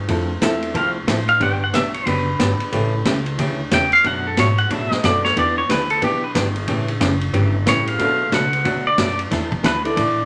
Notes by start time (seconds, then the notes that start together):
0.08 F2 F3 A3 C4 E4 F4 A4, kick, ride
0.41 E2 F3 A3 C4 E4 F4 A4 E5, kick, snare, hi-hat pedal, ride
0.62 ride
0.74 C2 F3 A3 C4 E4 A4 F5, kick, ride
1.07 A1 F3 A3 C4 E4 A4, kick, snare, hi-hat pedal, ride
1.28 F5, ride
1.40 G1 D3 F#3 B3 D4 F#4 G4 B4 F#5, kick, ride
1.53 G5
1.64 F#5
1.73 B1 D3 F#3 B3 D4 G4 E5, kick, snare, hi-hat pedal, ride
1.94 C#5, ride
2.06 F#1 D3 F#3 B3 D4 G4 B4, kick, ride
2.39 G1 D3 F#3 B3 D4 G4, kick, snare, hi-hat pedal, ride
2.60 ride
2.72 A1 C#3 E3 A3 C#4 E4 G4 A4, kick, ride
3.05 C#2 C#3 E3 A3 C#4 G4, kick, snare, hi-hat pedal, ride
3.26 ride
3.38 D2 C#3 E3 A3 C#4 G4, kick, ride
3.71 E2 C#3 E3 A3 C#4 G4 G5, kick, snare, hi-hat pedal, ride
3.92 F5, ride
4.04 F#2 B2 F#3 A3 D4 F#4 F#5, kick, ride
4.27 A4
4.37 G#2 B2 F#3 A3 D4 F#4 C#5, kick, snare, hi-hat pedal, ride
4.58 F#5, ride
4.70 A2 B2 F#3 A3 D4 F#4 E5, kick, ride
4.91 D#5, muted upright bass stroke, snare
5.03 F#2 B2 F#3 A3 B3 D4 F#4 A4 D5, kick, snare, hi-hat pedal, ride
5.24 C#5, snare
5.36 E2 E3 B3 D4 G4 D5, kick, ride
5.58 C#5
5.69 D2 E3 B3 D4 G4 B4, kick, snare, hi-hat pedal, ride
5.90 A4, ride
6.02 B1 E3 B3 D4 G4, kick, ride
6.24 B4
6.35 G1 E3 B3 D4 G4, kick, snare, hi-hat pedal, ride
6.56 ride
6.68 A1 C#3 E3 A3 C#4 G4, kick, ride
6.88 ride
7.00 F#1 C#3 E3 A3 C#4 G4, kick, snare, hi-hat pedal, ride
7.21 ride
7.33 G1 C#3 E3 A3 C#4 G4, kick, ride
7.66 A1 C#3 E3 G3 A3 C#4 E4 G4 C#5, kick, snare, hi-hat pedal, ride
7.87 F5, ride
7.99 B1 B2 F#3 A3 B3 D4 F#4 A4, kick, ride
8.32 C#2 B2 F#3 A3 D4 F#4 F#5, kick, snare, hi-hat pedal, ride
8.53 ride
8.65 D2 B2 F#3 A3 D4 F#4, kick, ride
8.87 D5
8.98 F#2 B2 F#3 A3 D4 F#4 D5, kick, snare, hi-hat pedal, ride
9.19 ride
9.31 E2 E3 A3 D4 E4 A4, kick, snare, ride
9.52 kick
9.63 D2 E3 A3 D4 E4 A4 B4, kick, snare, hi-hat pedal, ride
9.84 A3 B3 D4 E4 A4 D5, ride
9.96 A2 E3 A3 D4 E4 A4, kick, ride